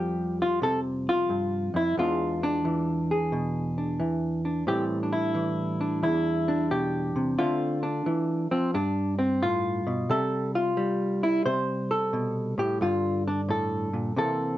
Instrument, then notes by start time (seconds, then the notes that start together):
hollow-body jazz guitar
Already playing: F2 F3 G3 G4
0.42 F4
0.62 C3 A4
1.09 F4
1.29 G2
1.74 F2 E4
1.97 E2 E3 G#3 D4 F4
2.43 D4
2.65 E3
3.11 G#4
3.32 B2
3.78 D4
4.00 E3
4.45 D4
4.67 A2 E3 G3 C4 G4
5.03 D4
5.13 E4
5.34 E3
5.81 D4
6.03 E2 E4
6.48 D4
6.71 B2 G4
7.16 C3
7.38 D3 A3 C4 F4
7.83 D4
8.06 E3
8.51 F3 C4
8.74 G2 D4
9.19 C4
9.42 A2 F4
9.87 B2
10.09 C3 G3 A4
10.55 F4
10.77 G3
11.23 E4
11.46 C3 C5
11.91 A4
12.13 B2
12.58 A2 G4
12.81 G2 D3 F4
13.28 D4
13.49 A2 A4
13.93 A#2
14.16 C3 E3 A#3 C4 A4